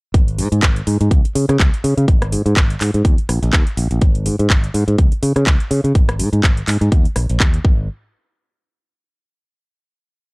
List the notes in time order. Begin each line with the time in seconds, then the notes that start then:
0.14 G#1, kick, closed hi-hat
0.28 closed hi-hat
0.38 G#2, open hi-hat
0.52 G#2, closed hi-hat
0.63 G#1, kick, clap, closed hi-hat
0.76 closed hi-hat
0.87 G#2, open hi-hat
1.01 G#2, closed hi-hat
1.11 C#2, kick, closed hi-hat
1.25 muted fingered electric bass stroke, closed hi-hat
1.35 C#3, open hi-hat
1.49 C#3, cross-stick, closed hi-hat
1.60 C#2, kick, clap, closed hi-hat
1.74 closed hi-hat
1.84 C#3, open hi-hat
1.97 C#3, closed hi-hat
2.08 G#1, kick, closed hi-hat
2.22 cross-stick, closed hi-hat
2.32 G#2, open hi-hat
2.46 G#2, closed hi-hat
2.56 G#1, kick, clap, closed hi-hat
2.70 closed hi-hat
2.81 G#2, clap, open hi-hat
2.94 G#2, closed hi-hat
3.05 D#2, kick, closed hi-hat
3.18 muted fingered electric bass stroke, closed hi-hat
3.29 A#1, cross-stick, open hi-hat
3.43 A#1, closed hi-hat
3.53 D#2, kick, clap, closed hi-hat
3.67 closed hi-hat
3.77 A#1, open hi-hat
3.91 A#1, closed hi-hat
4.01 kick, closed hi-hat
4.15 closed hi-hat
4.26 G#2, open hi-hat
4.39 G#2, closed hi-hat
4.50 G#1, kick, clap, closed hi-hat
4.64 closed hi-hat
4.74 G#2, open hi-hat
4.87 G#2, closed hi-hat
4.98 C#2, kick, closed hi-hat
5.12 muted fingered electric bass stroke, closed hi-hat
5.22 C#3, open hi-hat
5.36 C#3, cross-stick, closed hi-hat
5.47 C#2, kick, clap, closed hi-hat
5.60 closed hi-hat
5.71 C#3, open hi-hat
5.84 C#3, closed hi-hat
5.95 G#1, kick, closed hi-hat
6.09 cross-stick, closed hi-hat
6.19 G#2, open hi-hat
6.33 G#2, closed hi-hat
6.44 G#1, kick, clap, closed hi-hat
6.57 closed hi-hat
6.68 G#2, clap, open hi-hat
6.81 G#2, closed hi-hat
6.92 D#2, kick, closed hi-hat
7.05 muted fingered electric bass stroke, closed hi-hat
7.16 A#1, cross-stick, open hi-hat
7.29 A#1, closed hi-hat
7.40 D#2, kick, clap, closed hi-hat
7.54 closed hi-hat
7.65 G#1, kick